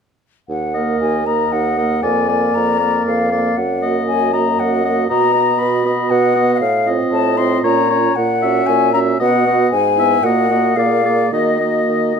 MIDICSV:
0, 0, Header, 1, 6, 480
1, 0, Start_track
1, 0, Key_signature, -6, "minor"
1, 0, Tempo, 519481
1, 447, Time_signature, 3, 2, 24, 8
1, 2361, Tempo, 508044
1, 6681, Tempo, 516796
1, 9561, Tempo, 550459
1, 11278, End_track
2, 0, Start_track
2, 0, Title_t, "Flute"
2, 0, Program_c, 0, 73
2, 448, Note_on_c, 0, 78, 44
2, 899, Note_off_c, 0, 78, 0
2, 926, Note_on_c, 0, 80, 47
2, 1166, Note_on_c, 0, 82, 51
2, 1180, Note_off_c, 0, 80, 0
2, 1405, Note_on_c, 0, 78, 51
2, 1419, Note_off_c, 0, 82, 0
2, 1874, Note_on_c, 0, 80, 49
2, 1888, Note_off_c, 0, 78, 0
2, 2352, Note_on_c, 0, 82, 55
2, 2366, Note_off_c, 0, 80, 0
2, 2836, Note_off_c, 0, 82, 0
2, 2842, Note_on_c, 0, 77, 52
2, 3318, Note_on_c, 0, 78, 47
2, 3333, Note_off_c, 0, 77, 0
2, 3785, Note_off_c, 0, 78, 0
2, 3790, Note_on_c, 0, 80, 60
2, 4039, Note_on_c, 0, 82, 54
2, 4053, Note_off_c, 0, 80, 0
2, 4286, Note_on_c, 0, 78, 58
2, 4300, Note_off_c, 0, 82, 0
2, 4747, Note_off_c, 0, 78, 0
2, 4753, Note_on_c, 0, 82, 64
2, 5222, Note_on_c, 0, 83, 59
2, 5236, Note_off_c, 0, 82, 0
2, 5712, Note_on_c, 0, 78, 71
2, 5726, Note_off_c, 0, 83, 0
2, 6124, Note_off_c, 0, 78, 0
2, 6130, Note_on_c, 0, 78, 54
2, 6177, Note_on_c, 0, 77, 66
2, 6187, Note_off_c, 0, 78, 0
2, 6449, Note_off_c, 0, 77, 0
2, 6672, Note_on_c, 0, 81, 67
2, 6908, Note_on_c, 0, 84, 66
2, 6922, Note_off_c, 0, 81, 0
2, 7143, Note_off_c, 0, 84, 0
2, 7148, Note_on_c, 0, 82, 71
2, 7635, Note_on_c, 0, 78, 70
2, 7648, Note_off_c, 0, 82, 0
2, 8107, Note_on_c, 0, 80, 73
2, 8121, Note_off_c, 0, 78, 0
2, 8347, Note_off_c, 0, 80, 0
2, 8352, Note_on_c, 0, 82, 65
2, 8408, Note_off_c, 0, 82, 0
2, 8611, Note_on_c, 0, 78, 77
2, 9079, Note_off_c, 0, 78, 0
2, 9084, Note_on_c, 0, 80, 66
2, 9564, Note_on_c, 0, 78, 71
2, 9577, Note_off_c, 0, 80, 0
2, 10024, Note_on_c, 0, 77, 65
2, 10037, Note_off_c, 0, 78, 0
2, 10504, Note_off_c, 0, 77, 0
2, 10509, Note_on_c, 0, 75, 50
2, 11278, Note_off_c, 0, 75, 0
2, 11278, End_track
3, 0, Start_track
3, 0, Title_t, "Oboe"
3, 0, Program_c, 1, 68
3, 685, Note_on_c, 1, 75, 35
3, 1159, Note_off_c, 1, 75, 0
3, 1169, Note_on_c, 1, 75, 28
3, 1634, Note_off_c, 1, 75, 0
3, 1646, Note_on_c, 1, 75, 32
3, 1866, Note_off_c, 1, 75, 0
3, 1872, Note_on_c, 1, 74, 35
3, 2105, Note_off_c, 1, 74, 0
3, 2111, Note_on_c, 1, 74, 31
3, 2578, Note_off_c, 1, 74, 0
3, 2583, Note_on_c, 1, 74, 33
3, 3065, Note_off_c, 1, 74, 0
3, 3080, Note_on_c, 1, 74, 31
3, 3317, Note_off_c, 1, 74, 0
3, 3557, Note_on_c, 1, 75, 33
3, 4032, Note_off_c, 1, 75, 0
3, 4040, Note_on_c, 1, 75, 35
3, 4516, Note_off_c, 1, 75, 0
3, 4531, Note_on_c, 1, 75, 38
3, 4757, Note_off_c, 1, 75, 0
3, 4762, Note_on_c, 1, 75, 44
3, 4981, Note_off_c, 1, 75, 0
3, 4987, Note_on_c, 1, 75, 37
3, 5464, Note_off_c, 1, 75, 0
3, 5485, Note_on_c, 1, 75, 39
3, 5947, Note_off_c, 1, 75, 0
3, 5952, Note_on_c, 1, 75, 41
3, 6190, Note_off_c, 1, 75, 0
3, 6428, Note_on_c, 1, 75, 41
3, 6905, Note_off_c, 1, 75, 0
3, 6910, Note_on_c, 1, 75, 45
3, 7149, Note_off_c, 1, 75, 0
3, 7154, Note_on_c, 1, 73, 48
3, 7390, Note_off_c, 1, 73, 0
3, 7399, Note_on_c, 1, 73, 44
3, 7633, Note_off_c, 1, 73, 0
3, 7882, Note_on_c, 1, 76, 47
3, 8353, Note_off_c, 1, 76, 0
3, 8364, Note_on_c, 1, 76, 47
3, 8601, Note_off_c, 1, 76, 0
3, 8604, Note_on_c, 1, 75, 49
3, 8842, Note_off_c, 1, 75, 0
3, 8852, Note_on_c, 1, 75, 48
3, 9083, Note_off_c, 1, 75, 0
3, 9340, Note_on_c, 1, 76, 45
3, 9566, Note_off_c, 1, 76, 0
3, 9587, Note_on_c, 1, 75, 41
3, 9800, Note_off_c, 1, 75, 0
3, 9815, Note_on_c, 1, 75, 37
3, 10033, Note_off_c, 1, 75, 0
3, 10046, Note_on_c, 1, 74, 37
3, 10270, Note_off_c, 1, 74, 0
3, 10280, Note_on_c, 1, 74, 37
3, 10511, Note_off_c, 1, 74, 0
3, 10525, Note_on_c, 1, 75, 42
3, 10758, Note_off_c, 1, 75, 0
3, 10767, Note_on_c, 1, 75, 36
3, 11238, Note_off_c, 1, 75, 0
3, 11278, End_track
4, 0, Start_track
4, 0, Title_t, "Clarinet"
4, 0, Program_c, 2, 71
4, 690, Note_on_c, 2, 70, 32
4, 1162, Note_off_c, 2, 70, 0
4, 1173, Note_on_c, 2, 70, 29
4, 1634, Note_off_c, 2, 70, 0
4, 1639, Note_on_c, 2, 70, 32
4, 1875, Note_off_c, 2, 70, 0
4, 1880, Note_on_c, 2, 70, 36
4, 2116, Note_off_c, 2, 70, 0
4, 2123, Note_on_c, 2, 70, 32
4, 2594, Note_off_c, 2, 70, 0
4, 2602, Note_on_c, 2, 70, 33
4, 3074, Note_off_c, 2, 70, 0
4, 3080, Note_on_c, 2, 70, 32
4, 3317, Note_off_c, 2, 70, 0
4, 3559, Note_on_c, 2, 66, 34
4, 4033, Note_off_c, 2, 66, 0
4, 4038, Note_on_c, 2, 66, 35
4, 4515, Note_off_c, 2, 66, 0
4, 4522, Note_on_c, 2, 66, 38
4, 4755, Note_off_c, 2, 66, 0
4, 4760, Note_on_c, 2, 66, 38
4, 4989, Note_off_c, 2, 66, 0
4, 4995, Note_on_c, 2, 66, 36
4, 5469, Note_off_c, 2, 66, 0
4, 5478, Note_on_c, 2, 66, 38
4, 5950, Note_off_c, 2, 66, 0
4, 5957, Note_on_c, 2, 66, 44
4, 6193, Note_off_c, 2, 66, 0
4, 6434, Note_on_c, 2, 65, 45
4, 6908, Note_off_c, 2, 65, 0
4, 6921, Note_on_c, 2, 65, 44
4, 7155, Note_off_c, 2, 65, 0
4, 7163, Note_on_c, 2, 65, 46
4, 7395, Note_off_c, 2, 65, 0
4, 7404, Note_on_c, 2, 65, 45
4, 7636, Note_off_c, 2, 65, 0
4, 7883, Note_on_c, 2, 66, 46
4, 8354, Note_off_c, 2, 66, 0
4, 8359, Note_on_c, 2, 66, 44
4, 8598, Note_off_c, 2, 66, 0
4, 8608, Note_on_c, 2, 66, 43
4, 8835, Note_off_c, 2, 66, 0
4, 8841, Note_on_c, 2, 66, 50
4, 9078, Note_off_c, 2, 66, 0
4, 9316, Note_on_c, 2, 64, 43
4, 9554, Note_off_c, 2, 64, 0
4, 9560, Note_on_c, 2, 66, 45
4, 9784, Note_off_c, 2, 66, 0
4, 9789, Note_on_c, 2, 66, 42
4, 10020, Note_off_c, 2, 66, 0
4, 10024, Note_on_c, 2, 68, 43
4, 10259, Note_off_c, 2, 68, 0
4, 10270, Note_on_c, 2, 68, 43
4, 10506, Note_off_c, 2, 68, 0
4, 10514, Note_on_c, 2, 66, 34
4, 10750, Note_off_c, 2, 66, 0
4, 10755, Note_on_c, 2, 66, 37
4, 11232, Note_off_c, 2, 66, 0
4, 11246, Note_on_c, 2, 66, 34
4, 11278, Note_off_c, 2, 66, 0
4, 11278, End_track
5, 0, Start_track
5, 0, Title_t, "French horn"
5, 0, Program_c, 3, 60
5, 697, Note_on_c, 3, 58, 37
5, 1163, Note_off_c, 3, 58, 0
5, 1169, Note_on_c, 3, 58, 29
5, 1634, Note_off_c, 3, 58, 0
5, 1641, Note_on_c, 3, 58, 37
5, 1876, Note_off_c, 3, 58, 0
5, 1890, Note_on_c, 3, 58, 32
5, 2105, Note_off_c, 3, 58, 0
5, 2111, Note_on_c, 3, 58, 36
5, 2587, Note_off_c, 3, 58, 0
5, 2598, Note_on_c, 3, 58, 37
5, 3072, Note_off_c, 3, 58, 0
5, 3094, Note_on_c, 3, 58, 34
5, 3324, Note_off_c, 3, 58, 0
5, 3562, Note_on_c, 3, 58, 34
5, 4035, Note_off_c, 3, 58, 0
5, 4045, Note_on_c, 3, 58, 37
5, 4519, Note_off_c, 3, 58, 0
5, 4533, Note_on_c, 3, 58, 39
5, 4765, Note_off_c, 3, 58, 0
5, 4771, Note_on_c, 3, 59, 37
5, 5003, Note_off_c, 3, 59, 0
5, 5009, Note_on_c, 3, 59, 39
5, 5476, Note_off_c, 3, 59, 0
5, 5481, Note_on_c, 3, 59, 41
5, 5951, Note_off_c, 3, 59, 0
5, 5961, Note_on_c, 3, 59, 46
5, 6195, Note_off_c, 3, 59, 0
5, 6435, Note_on_c, 3, 60, 45
5, 6908, Note_off_c, 3, 60, 0
5, 6921, Note_on_c, 3, 60, 48
5, 7155, Note_off_c, 3, 60, 0
5, 7162, Note_on_c, 3, 61, 52
5, 7394, Note_off_c, 3, 61, 0
5, 7402, Note_on_c, 3, 61, 47
5, 7635, Note_off_c, 3, 61, 0
5, 7892, Note_on_c, 3, 61, 50
5, 8358, Note_off_c, 3, 61, 0
5, 8369, Note_on_c, 3, 61, 47
5, 8603, Note_off_c, 3, 61, 0
5, 8619, Note_on_c, 3, 59, 48
5, 8849, Note_off_c, 3, 59, 0
5, 8864, Note_on_c, 3, 59, 51
5, 9089, Note_off_c, 3, 59, 0
5, 9330, Note_on_c, 3, 59, 44
5, 9561, Note_off_c, 3, 59, 0
5, 9573, Note_on_c, 3, 58, 47
5, 9793, Note_off_c, 3, 58, 0
5, 9805, Note_on_c, 3, 58, 47
5, 10028, Note_off_c, 3, 58, 0
5, 10039, Note_on_c, 3, 58, 42
5, 10266, Note_off_c, 3, 58, 0
5, 10277, Note_on_c, 3, 58, 45
5, 10510, Note_off_c, 3, 58, 0
5, 10519, Note_on_c, 3, 58, 39
5, 10755, Note_off_c, 3, 58, 0
5, 10763, Note_on_c, 3, 58, 37
5, 11236, Note_off_c, 3, 58, 0
5, 11278, End_track
6, 0, Start_track
6, 0, Title_t, "Bassoon"
6, 0, Program_c, 4, 70
6, 446, Note_on_c, 4, 39, 37
6, 875, Note_off_c, 4, 39, 0
6, 934, Note_on_c, 4, 39, 39
6, 1354, Note_off_c, 4, 39, 0
6, 1402, Note_on_c, 4, 39, 42
6, 1823, Note_off_c, 4, 39, 0
6, 1871, Note_on_c, 4, 41, 44
6, 2298, Note_off_c, 4, 41, 0
6, 2365, Note_on_c, 4, 41, 44
6, 2789, Note_off_c, 4, 41, 0
6, 2838, Note_on_c, 4, 41, 43
6, 3265, Note_off_c, 4, 41, 0
6, 3321, Note_on_c, 4, 42, 40
6, 3744, Note_off_c, 4, 42, 0
6, 3795, Note_on_c, 4, 42, 39
6, 4227, Note_off_c, 4, 42, 0
6, 4282, Note_on_c, 4, 42, 45
6, 4708, Note_off_c, 4, 42, 0
6, 4765, Note_on_c, 4, 47, 47
6, 5186, Note_off_c, 4, 47, 0
6, 5238, Note_on_c, 4, 47, 49
6, 5664, Note_off_c, 4, 47, 0
6, 5718, Note_on_c, 4, 47, 55
6, 6141, Note_off_c, 4, 47, 0
6, 6192, Note_on_c, 4, 45, 51
6, 6544, Note_off_c, 4, 45, 0
6, 6672, Note_on_c, 4, 45, 58
6, 7098, Note_off_c, 4, 45, 0
6, 7158, Note_on_c, 4, 46, 60
6, 7580, Note_off_c, 4, 46, 0
6, 7644, Note_on_c, 4, 46, 55
6, 8068, Note_off_c, 4, 46, 0
6, 8130, Note_on_c, 4, 46, 59
6, 8551, Note_off_c, 4, 46, 0
6, 8607, Note_on_c, 4, 47, 62
6, 9031, Note_off_c, 4, 47, 0
6, 9092, Note_on_c, 4, 44, 59
6, 9509, Note_off_c, 4, 44, 0
6, 9560, Note_on_c, 4, 46, 53
6, 9970, Note_off_c, 4, 46, 0
6, 10027, Note_on_c, 4, 46, 50
6, 10451, Note_off_c, 4, 46, 0
6, 10512, Note_on_c, 4, 51, 46
6, 10943, Note_off_c, 4, 51, 0
6, 11003, Note_on_c, 4, 51, 39
6, 11278, Note_off_c, 4, 51, 0
6, 11278, End_track
0, 0, End_of_file